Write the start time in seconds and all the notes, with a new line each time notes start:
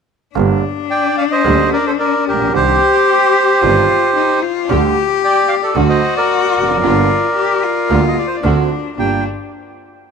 0.35 G1 G2 D3 G3 A#3 D4 G4
0.90 D5 G5
1.18 D5 F5
1.31 C5 D#5
1.45 D2 D3 G3 A#3 G4
1.73 A#4 D5
1.87 A4 C5
2.00 A#4 D5
2.27 A#1 G4 A#4
2.33 A1
2.40 A#1
2.47 B1
2.53 C2 C3 D#3 C4 D4 G4 C5
3.62 G1 G2 D#3 C4 D4 F4 G4
4.16 D#4
4.42 F4
4.69 D2 D3 G3 A3 D4 G4
5.24 D5 G5
5.48 D5 F5
5.62 A4 D5
5.75 D2 D3 F#3 A3 D4 F#4
5.89 C5 D#5
6.16 A#4 D5
6.56 F1
6.63 E2
6.70 F2
6.77 F#2
6.83 G1 G2 D3 G3 A#3 F4 G4
7.36 G4
7.63 F4
7.89 D2 D3 G3 A#3 F4 G4
8.07 D#5
8.18 D5
8.27 C5
8.37 D5
8.43 D2 D3 A3 C4 D4 F#4
8.97 G1 G2 A#3 D4 F4 G4 G5